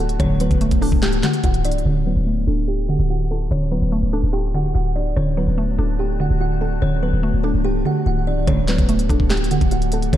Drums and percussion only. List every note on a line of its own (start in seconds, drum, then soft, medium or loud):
0.09 closed hi-hat medium
0.20 kick loud
0.20 closed hi-hat medium
0.40 closed hi-hat medium
0.51 kick loud
0.51 closed hi-hat medium
0.61 closed hi-hat medium
0.71 kick medium
0.71 closed hi-hat medium
0.82 open hi-hat medium
0.92 kick loud
1.02 snare loud
1.02 clap loud
1.02 closed hi-hat medium
1.13 closed hi-hat medium
1.23 snare medium
1.23 clap medium
1.23 closed hi-hat medium
1.33 closed hi-hat medium
1.44 kick medium
1.44 closed hi-hat medium
1.54 closed hi-hat medium
1.65 closed hi-hat medium
1.72 closed hi-hat medium
1.78 closed hi-hat soft
8.47 kick loud
8.47 closed hi-hat medium
8.68 snare loud
8.68 clap medium
8.68 closed hi-hat medium
8.78 kick loud
8.78 closed hi-hat medium
8.89 closed hi-hat medium
8.99 closed hi-hat medium
9.09 kick loud
9.09 closed hi-hat medium
9.20 kick loud
9.30 snare loud
9.30 clap loud
9.30 closed hi-hat medium
9.37 closed hi-hat medium
9.44 closed hi-hat medium
9.51 closed hi-hat medium
9.61 kick loud
9.61 closed hi-hat medium
9.71 closed hi-hat medium
9.82 closed hi-hat medium
9.92 closed hi-hat medium
10.02 closed hi-hat medium
10.13 kick loud
10.13 closed hi-hat medium